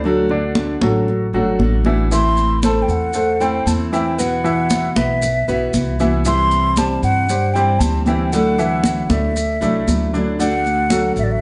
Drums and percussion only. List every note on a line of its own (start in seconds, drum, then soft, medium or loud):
0.04 high conga soft
0.29 high conga soft
0.55 high conga medium
0.81 high conga medium
1.08 high conga soft
1.34 high conga soft
1.60 high conga medium
1.85 high conga medium
2.11 high conga soft
2.11 maracas medium
2.37 high conga soft
2.37 maracas soft
2.63 high conga medium
2.63 maracas medium
2.89 high conga soft
2.89 maracas soft
3.13 high conga soft
3.13 maracas medium
3.41 high conga soft
3.41 maracas soft
3.67 high conga medium
3.67 maracas medium
3.93 maracas soft
4.19 high conga soft
4.19 maracas medium
4.44 high conga soft
4.44 maracas soft
4.70 high conga medium
4.70 maracas medium
4.96 high conga medium
4.96 maracas soft
5.22 high conga soft
5.22 maracas medium
5.48 high conga soft
5.48 maracas soft
5.73 high conga medium
5.73 maracas medium
5.99 high conga medium
5.99 maracas soft
6.25 high conga soft
6.25 maracas medium
6.51 high conga soft
6.51 maracas soft
6.76 high conga medium
6.76 maracas medium
7.03 high conga soft
7.03 maracas soft
7.29 high conga soft
7.29 maracas medium
7.56 high conga soft
7.56 maracas soft
7.81 high conga medium
7.81 maracas medium
8.06 high conga medium
8.06 maracas soft
8.32 high conga soft
8.32 maracas medium
8.59 high conga soft
8.59 maracas soft
8.84 high conga medium
8.84 maracas medium
9.10 high conga medium
9.10 maracas soft
9.36 high conga soft
9.36 maracas medium
9.61 high conga soft
9.61 maracas soft
9.88 high conga medium
9.88 maracas medium
10.14 maracas soft
10.40 high conga soft
10.40 maracas medium
10.65 high conga soft
10.65 maracas soft
10.90 high conga medium
10.90 maracas medium
11.16 high conga soft
11.16 maracas soft